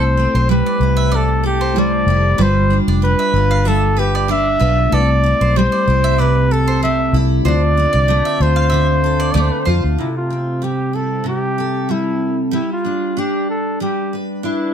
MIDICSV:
0, 0, Header, 1, 6, 480
1, 0, Start_track
1, 0, Key_signature, 0, "major"
1, 0, Tempo, 633580
1, 1805, Time_signature, 4, 2, 24, 8
1, 11166, End_track
2, 0, Start_track
2, 0, Title_t, "Mandolin"
2, 0, Program_c, 0, 25
2, 265, Note_on_c, 0, 72, 70
2, 365, Note_off_c, 0, 72, 0
2, 503, Note_on_c, 0, 74, 71
2, 603, Note_off_c, 0, 74, 0
2, 732, Note_on_c, 0, 76, 85
2, 838, Note_off_c, 0, 76, 0
2, 845, Note_on_c, 0, 74, 81
2, 971, Note_off_c, 0, 74, 0
2, 1219, Note_on_c, 0, 72, 78
2, 1446, Note_off_c, 0, 72, 0
2, 1804, Note_on_c, 0, 71, 85
2, 1930, Note_off_c, 0, 71, 0
2, 2182, Note_on_c, 0, 74, 79
2, 2282, Note_off_c, 0, 74, 0
2, 2416, Note_on_c, 0, 76, 79
2, 2519, Note_off_c, 0, 76, 0
2, 2657, Note_on_c, 0, 77, 77
2, 2768, Note_off_c, 0, 77, 0
2, 2768, Note_on_c, 0, 76, 74
2, 2891, Note_off_c, 0, 76, 0
2, 3143, Note_on_c, 0, 74, 81
2, 3242, Note_off_c, 0, 74, 0
2, 3251, Note_on_c, 0, 74, 80
2, 3372, Note_off_c, 0, 74, 0
2, 3488, Note_on_c, 0, 71, 70
2, 3610, Note_off_c, 0, 71, 0
2, 3730, Note_on_c, 0, 69, 83
2, 3851, Note_off_c, 0, 69, 0
2, 4101, Note_on_c, 0, 72, 77
2, 4200, Note_off_c, 0, 72, 0
2, 4335, Note_on_c, 0, 74, 67
2, 4436, Note_off_c, 0, 74, 0
2, 4576, Note_on_c, 0, 76, 93
2, 4685, Note_off_c, 0, 76, 0
2, 4685, Note_on_c, 0, 74, 81
2, 4808, Note_off_c, 0, 74, 0
2, 5058, Note_on_c, 0, 72, 81
2, 5283, Note_off_c, 0, 72, 0
2, 5644, Note_on_c, 0, 72, 94
2, 5767, Note_off_c, 0, 72, 0
2, 6007, Note_on_c, 0, 74, 78
2, 6111, Note_off_c, 0, 74, 0
2, 6252, Note_on_c, 0, 76, 77
2, 6354, Note_off_c, 0, 76, 0
2, 6485, Note_on_c, 0, 77, 82
2, 6585, Note_off_c, 0, 77, 0
2, 6588, Note_on_c, 0, 76, 77
2, 6718, Note_off_c, 0, 76, 0
2, 6968, Note_on_c, 0, 74, 88
2, 7067, Note_off_c, 0, 74, 0
2, 7076, Note_on_c, 0, 74, 82
2, 7203, Note_off_c, 0, 74, 0
2, 7314, Note_on_c, 0, 72, 72
2, 7442, Note_off_c, 0, 72, 0
2, 11166, End_track
3, 0, Start_track
3, 0, Title_t, "Flugelhorn"
3, 0, Program_c, 1, 56
3, 0, Note_on_c, 1, 72, 104
3, 378, Note_off_c, 1, 72, 0
3, 385, Note_on_c, 1, 71, 96
3, 874, Note_on_c, 1, 69, 101
3, 886, Note_off_c, 1, 71, 0
3, 1100, Note_off_c, 1, 69, 0
3, 1109, Note_on_c, 1, 67, 85
3, 1353, Note_on_c, 1, 74, 95
3, 1364, Note_off_c, 1, 67, 0
3, 1833, Note_on_c, 1, 72, 104
3, 1845, Note_off_c, 1, 74, 0
3, 2099, Note_off_c, 1, 72, 0
3, 2305, Note_on_c, 1, 71, 105
3, 2787, Note_on_c, 1, 69, 107
3, 2798, Note_off_c, 1, 71, 0
3, 3024, Note_on_c, 1, 67, 88
3, 3035, Note_off_c, 1, 69, 0
3, 3253, Note_off_c, 1, 67, 0
3, 3265, Note_on_c, 1, 76, 111
3, 3743, Note_on_c, 1, 74, 96
3, 3755, Note_off_c, 1, 76, 0
3, 4219, Note_on_c, 1, 72, 107
3, 4230, Note_off_c, 1, 74, 0
3, 4700, Note_on_c, 1, 71, 110
3, 4711, Note_off_c, 1, 72, 0
3, 4939, Note_on_c, 1, 69, 98
3, 4951, Note_off_c, 1, 71, 0
3, 5169, Note_off_c, 1, 69, 0
3, 5179, Note_on_c, 1, 76, 100
3, 5430, Note_off_c, 1, 76, 0
3, 5658, Note_on_c, 1, 74, 113
3, 6378, Note_on_c, 1, 72, 92
3, 6390, Note_off_c, 1, 74, 0
3, 7057, Note_on_c, 1, 74, 78
3, 7068, Note_off_c, 1, 72, 0
3, 7130, Note_on_c, 1, 72, 70
3, 7141, Note_off_c, 1, 74, 0
3, 7208, Note_on_c, 1, 71, 75
3, 7219, Note_off_c, 1, 72, 0
3, 7272, Note_on_c, 1, 72, 61
3, 7283, Note_off_c, 1, 71, 0
3, 7326, Note_off_c, 1, 72, 0
3, 7570, Note_on_c, 1, 64, 70
3, 7688, Note_off_c, 1, 64, 0
3, 7705, Note_on_c, 1, 65, 69
3, 8060, Note_on_c, 1, 67, 77
3, 8071, Note_off_c, 1, 65, 0
3, 8294, Note_on_c, 1, 69, 77
3, 8306, Note_off_c, 1, 67, 0
3, 8528, Note_off_c, 1, 69, 0
3, 8545, Note_on_c, 1, 67, 90
3, 9024, Note_on_c, 1, 64, 74
3, 9035, Note_off_c, 1, 67, 0
3, 9387, Note_off_c, 1, 64, 0
3, 9503, Note_on_c, 1, 64, 72
3, 9618, Note_off_c, 1, 64, 0
3, 9639, Note_on_c, 1, 65, 75
3, 9992, Note_on_c, 1, 67, 78
3, 10003, Note_off_c, 1, 65, 0
3, 10220, Note_off_c, 1, 67, 0
3, 10226, Note_on_c, 1, 69, 75
3, 10442, Note_off_c, 1, 69, 0
3, 10468, Note_on_c, 1, 67, 77
3, 10721, Note_off_c, 1, 67, 0
3, 10945, Note_on_c, 1, 64, 77
3, 11166, Note_off_c, 1, 64, 0
3, 11166, End_track
4, 0, Start_track
4, 0, Title_t, "Reed electric piano"
4, 0, Program_c, 2, 4
4, 0, Note_on_c, 2, 57, 60
4, 0, Note_on_c, 2, 60, 63
4, 0, Note_on_c, 2, 64, 57
4, 23, Control_c, 2, 64, 127
4, 1286, Note_off_c, 2, 57, 0
4, 1294, Note_off_c, 2, 64, 0
4, 1301, Note_off_c, 2, 60, 0
4, 1313, Note_on_c, 2, 57, 47
4, 1321, Note_on_c, 2, 64, 44
4, 1331, Note_on_c, 2, 72, 52
4, 1791, Note_on_c, 2, 55, 60
4, 1799, Note_off_c, 2, 57, 0
4, 1803, Note_off_c, 2, 64, 0
4, 1806, Note_on_c, 2, 65, 56
4, 1807, Note_off_c, 2, 72, 0
4, 1816, Control_c, 2, 64, 0
4, 1823, Note_on_c, 2, 83, 68
4, 1963, Control_c, 2, 64, 127
4, 3685, Note_off_c, 2, 55, 0
4, 3692, Note_off_c, 2, 65, 0
4, 3701, Note_off_c, 2, 83, 0
4, 3709, Note_on_c, 2, 57, 62
4, 3723, Note_on_c, 2, 64, 52
4, 3731, Control_c, 2, 64, 0
4, 3737, Note_on_c, 2, 71, 59
4, 3783, Note_off_c, 2, 71, 0
4, 3789, Note_on_c, 2, 60, 70
4, 3871, Control_c, 2, 64, 127
4, 5602, Note_off_c, 2, 57, 0
4, 5609, Note_off_c, 2, 64, 0
4, 5619, Note_off_c, 2, 60, 0
4, 5628, Note_on_c, 2, 60, 62
4, 5642, Note_on_c, 2, 65, 64
4, 5648, Control_c, 2, 64, 0
4, 5657, Note_on_c, 2, 74, 72
4, 5783, Control_c, 2, 64, 127
4, 7523, Note_off_c, 2, 60, 0
4, 7530, Note_off_c, 2, 65, 0
4, 7538, Note_off_c, 2, 74, 0
4, 7567, Control_c, 2, 64, 0
4, 11166, End_track
5, 0, Start_track
5, 0, Title_t, "Steel-string acoustic guitar"
5, 0, Program_c, 3, 25
5, 0, Note_on_c, 3, 57, 73
5, 0, Note_on_c, 3, 60, 62
5, 0, Note_on_c, 3, 69, 67
5, 128, Note_off_c, 3, 60, 0
5, 131, Note_on_c, 3, 60, 52
5, 368, Note_off_c, 3, 57, 0
5, 371, Note_on_c, 3, 55, 73
5, 393, Note_off_c, 3, 69, 0
5, 612, Note_on_c, 3, 64, 58
5, 848, Note_on_c, 3, 48, 68
5, 1086, Note_on_c, 3, 69, 61
5, 1329, Note_off_c, 3, 55, 0
5, 1332, Note_on_c, 3, 55, 69
5, 1565, Note_off_c, 3, 64, 0
5, 1574, Note_on_c, 3, 64, 66
5, 1804, Note_off_c, 3, 55, 0
5, 1807, Note_on_c, 3, 55, 93
5, 1858, Note_off_c, 3, 69, 0
5, 1859, Note_off_c, 3, 48, 0
5, 1860, Note_off_c, 3, 60, 0
5, 1862, Note_off_c, 3, 64, 0
5, 2048, Note_on_c, 3, 62, 56
5, 2279, Note_off_c, 3, 62, 0
5, 2288, Note_on_c, 3, 62, 67
5, 2529, Note_on_c, 3, 65, 56
5, 2763, Note_off_c, 3, 55, 0
5, 2766, Note_on_c, 3, 55, 76
5, 3004, Note_on_c, 3, 71, 65
5, 3235, Note_off_c, 3, 62, 0
5, 3244, Note_on_c, 3, 62, 78
5, 3472, Note_off_c, 3, 65, 0
5, 3481, Note_on_c, 3, 65, 68
5, 3774, Note_off_c, 3, 65, 0
5, 3775, Note_off_c, 3, 62, 0
5, 3775, Note_off_c, 3, 71, 0
5, 3966, Note_on_c, 3, 60, 52
5, 4211, Note_off_c, 3, 55, 0
5, 4214, Note_on_c, 3, 55, 78
5, 4451, Note_on_c, 3, 64, 67
5, 4691, Note_on_c, 3, 48, 70
5, 4934, Note_on_c, 3, 69, 66
5, 5162, Note_off_c, 3, 55, 0
5, 5171, Note_on_c, 3, 55, 80
5, 5402, Note_off_c, 3, 64, 0
5, 5411, Note_on_c, 3, 64, 67
5, 5652, Note_on_c, 3, 50, 81
5, 5697, Note_off_c, 3, 48, 0
5, 5697, Note_off_c, 3, 55, 0
5, 5697, Note_off_c, 3, 64, 0
5, 5887, Note_off_c, 3, 60, 0
5, 5890, Note_on_c, 3, 60, 62
5, 6122, Note_on_c, 3, 57, 75
5, 6368, Note_on_c, 3, 65, 60
5, 6594, Note_off_c, 3, 50, 0
5, 6603, Note_on_c, 3, 50, 72
5, 6843, Note_off_c, 3, 69, 0
5, 6846, Note_on_c, 3, 69, 61
5, 7081, Note_off_c, 3, 57, 0
5, 7084, Note_on_c, 3, 57, 73
5, 7317, Note_off_c, 3, 65, 0
5, 7326, Note_on_c, 3, 65, 63
5, 7564, Note_on_c, 3, 48, 65
5, 7614, Note_off_c, 3, 50, 0
5, 7616, Note_off_c, 3, 65, 0
5, 7803, Note_off_c, 3, 60, 0
5, 7806, Note_on_c, 3, 60, 41
5, 8040, Note_off_c, 3, 57, 0
5, 8043, Note_on_c, 3, 55, 54
5, 8066, Note_off_c, 3, 69, 0
5, 8282, Note_on_c, 3, 64, 44
5, 8504, Note_off_c, 3, 48, 0
5, 8513, Note_on_c, 3, 48, 59
5, 8773, Note_on_c, 3, 69, 50
5, 9002, Note_off_c, 3, 55, 0
5, 9005, Note_on_c, 3, 55, 53
5, 9477, Note_off_c, 3, 55, 0
5, 9480, Note_on_c, 3, 55, 68
5, 9534, Note_off_c, 3, 48, 0
5, 9539, Note_off_c, 3, 64, 0
5, 9541, Note_off_c, 3, 60, 0
5, 9544, Note_off_c, 3, 69, 0
5, 9732, Note_on_c, 3, 62, 41
5, 9966, Note_off_c, 3, 62, 0
5, 9975, Note_on_c, 3, 62, 57
5, 10454, Note_off_c, 3, 55, 0
5, 10457, Note_on_c, 3, 55, 55
5, 10705, Note_on_c, 3, 71, 48
5, 10925, Note_off_c, 3, 62, 0
5, 10934, Note_on_c, 3, 62, 55
5, 11166, Note_off_c, 3, 55, 0
5, 11166, Note_off_c, 3, 62, 0
5, 11166, Note_off_c, 3, 71, 0
5, 11166, End_track
6, 0, Start_track
6, 0, Title_t, "Fingered electric bass"
6, 0, Program_c, 4, 33
6, 0, Note_on_c, 4, 36, 99
6, 192, Note_off_c, 4, 36, 0
6, 259, Note_on_c, 4, 35, 82
6, 456, Note_off_c, 4, 35, 0
6, 604, Note_on_c, 4, 36, 92
6, 1534, Note_off_c, 4, 36, 0
6, 1562, Note_on_c, 4, 29, 96
6, 1760, Note_off_c, 4, 29, 0
6, 1807, Note_on_c, 4, 31, 99
6, 2111, Note_off_c, 4, 31, 0
6, 2176, Note_on_c, 4, 29, 84
6, 2373, Note_off_c, 4, 29, 0
6, 2524, Note_on_c, 4, 31, 92
6, 3452, Note_off_c, 4, 31, 0
6, 3490, Note_on_c, 4, 35, 98
6, 3684, Note_off_c, 4, 35, 0
6, 3727, Note_on_c, 4, 36, 114
6, 4030, Note_off_c, 4, 36, 0
6, 4096, Note_on_c, 4, 35, 83
6, 4291, Note_off_c, 4, 35, 0
6, 4449, Note_on_c, 4, 36, 97
6, 5373, Note_off_c, 4, 36, 0
6, 5400, Note_on_c, 4, 36, 94
6, 5596, Note_off_c, 4, 36, 0
6, 5644, Note_on_c, 4, 38, 112
6, 5947, Note_off_c, 4, 38, 0
6, 6014, Note_on_c, 4, 36, 74
6, 6209, Note_off_c, 4, 36, 0
6, 6364, Note_on_c, 4, 38, 90
6, 7051, Note_off_c, 4, 38, 0
6, 7080, Note_on_c, 4, 38, 81
6, 7188, Note_off_c, 4, 38, 0
6, 7323, Note_on_c, 4, 41, 83
6, 7429, Note_off_c, 4, 41, 0
6, 7455, Note_on_c, 4, 38, 89
6, 7542, Note_off_c, 4, 38, 0
6, 11166, End_track
0, 0, End_of_file